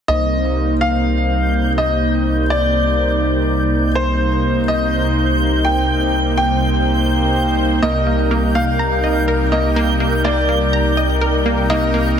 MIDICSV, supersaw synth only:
0, 0, Header, 1, 2, 480
1, 0, Start_track
1, 0, Key_signature, -3, "minor"
1, 0, Tempo, 483871
1, 84, Time_signature, 4, 2, 24, 8
1, 12098, End_track
2, 0, Start_track
2, 0, Title_t, "Supersaw synth"
2, 0, Program_c, 0, 81
2, 84, Note_on_c, 0, 63, 67
2, 84, Note_on_c, 0, 72, 80
2, 85, Note_on_c, 0, 58, 73
2, 3897, Note_off_c, 0, 63, 0
2, 3897, Note_off_c, 0, 72, 0
2, 3898, Note_off_c, 0, 58, 0
2, 3925, Note_on_c, 0, 58, 74
2, 3925, Note_on_c, 0, 63, 69
2, 3925, Note_on_c, 0, 72, 85
2, 7738, Note_off_c, 0, 58, 0
2, 7738, Note_off_c, 0, 63, 0
2, 7738, Note_off_c, 0, 72, 0
2, 7764, Note_on_c, 0, 55, 77
2, 7764, Note_on_c, 0, 70, 82
2, 7765, Note_on_c, 0, 63, 70
2, 11577, Note_off_c, 0, 55, 0
2, 11577, Note_off_c, 0, 70, 0
2, 11578, Note_off_c, 0, 63, 0
2, 11605, Note_on_c, 0, 55, 74
2, 11605, Note_on_c, 0, 63, 70
2, 11605, Note_on_c, 0, 70, 83
2, 12098, Note_off_c, 0, 55, 0
2, 12098, Note_off_c, 0, 63, 0
2, 12098, Note_off_c, 0, 70, 0
2, 12098, End_track
0, 0, End_of_file